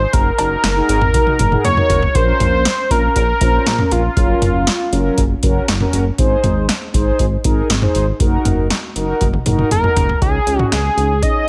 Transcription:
Already playing: C5
0.13 F#1 D#4 F#4 A#4, kick, closed hi-hat
0.38 F#1 D#4 F#4 A#4, closed hi-hat, cowbell
0.64 F#1, snare, closed hi-hat
0.76 D#4 F#4 G#4
0.89 G#1, closed hi-hat
1.01 mid tom
1.14 D#4 F#4 A#4, kick, closed hi-hat, high tom
1.27 high tom
1.39 F#1, closed hi-hat, mid tom
1.52 D#4 F#4 G#4, mid tom
1.65 F#1 C#5, closed hi-hat, mid tom
1.77 D#4 F#4 A#4, mid tom
1.90 F#1, closed hi-hat, floor tom
2.02 floor tom
2.15 A#1 C#4 F4 A#4 C5, kick, closed hi-hat
2.40 A#1, closed hi-hat, mid tom
2.65 snare, closed hi-hat
2.91 A#1 C#4 F4 A#4, kick, closed hi-hat
3.16 A#1 A#4, kick, closed hi-hat
3.41 A#1 C#4 F4 C5, kick, closed hi-hat
3.66 A#1, snare, closed hi-hat
3.79 C#4 F4 A#4, mid tom
3.91 A#1 F4, closed hi-hat
4.17 F#1 F#3 C#4 A#4, kick, closed hi-hat
4.42 F#1, closed hi-hat, mid tom
4.67 snare, closed hi-hat
4.92 F#1 F#3 C#4 A#4, closed hi-hat
5.18 F#1, kick, closed hi-hat
5.43 F#1 C#4 F#4 A#4, kick, closed hi-hat
5.68 F#1, snare, closed hi-hat
5.80 C#4 F#4 A#4, mid tom
5.93 F#1, closed hi-hat
6.18 G#1 D#4 G#4 C5, kick, closed hi-hat
6.44 G#1, closed hi-hat, mid tom
6.69 snare, closed hi-hat
6.94 G#1 D#4 G#4 C5, kick, closed hi-hat
7.19 G#1, kick, closed hi-hat
7.44 G#1 D#4 G#4 A#4, kick, closed hi-hat
7.70 G#1, snare, closed hi-hat
7.82 D#4 G#4 C5, mid tom
7.95 G#1, closed hi-hat
8.20 F#1 D#4 F#4 A#4, kick, closed hi-hat
8.45 F#1, closed hi-hat, mid tom
8.70 snare, closed hi-hat
8.96 F#1 D#4 F#4 A#4, closed hi-hat
9.21 F#1, kick, closed hi-hat, high tom
9.33 high tom
9.46 F#1 D#4 F#4 A#4, closed hi-hat, mid tom
9.59 mid tom
9.71 F#1 A#4, closed hi-hat, mid tom
9.84 D#4 F#4 A#4, mid tom
9.97 F#1, closed hi-hat, floor tom
10.09 floor tom
10.22 C#2 C#4 D#4 G#4, kick, closed hi-hat
10.47 C#2 C#4 D#4 G#4, closed hi-hat
10.59 mid tom
10.72 C#2 G#4, snare, closed hi-hat
10.97 C#2 C#4 D#4 G#4, closed hi-hat
11.22 C#4 D#4 G#4 D#5, kick, closed hi-hat

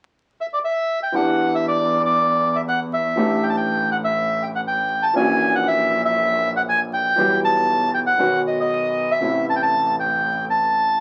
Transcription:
0.41 E5
0.53 D5
0.65 E5
1.03 G5
1.14 E2 E3 B3 D4 G4 F#5
1.55 E5
1.68 D5
2.05 D5
2.56 E5
2.69 F#5
2.94 E5
3.16 A1 A2 E3 A3 D4
3.20 G4
3.43 G5
3.49 A5
3.57 G5
3.92 F#5
4.04 E5
4.43 G5
4.56 F#5
4.68 G5
5.03 A5
5.14 A#1 A#2 E3 A#3 C#4 G#5
5.18 F#4
5.55 F#5
5.68 E5
6.05 E5
6.56 F#5
6.69 G#5
6.94 G5
7.16 B1 B2 E3 G3 B3 G4
7.45 A5
7.94 G5
8.06 F#5
8.17 B1 B2 D#3 F#3 B3 F#4
8.47 D#5
8.60 D#5
9.11 E5
9.20 A1 A2 C3 E3 A3
9.24 E4
9.50 A5
9.56 G5
9.63 A5
10.00 G5
10.50 A5

